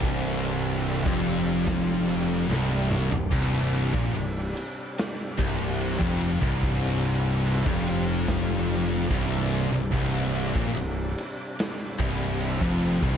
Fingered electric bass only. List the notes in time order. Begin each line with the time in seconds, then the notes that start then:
Already playing: C1
1.06 F1
2.49 C1
3.11 C1
3.32 C1
3.94 A#1
4.13 C1
5.38 C1
6.01 F1
6.42 C1
7.66 F1
9.11 C1
9.72 C1
9.94 C1
10.55 A#1
10.75 C1
11.99 C1
12.61 F1
13.02 C1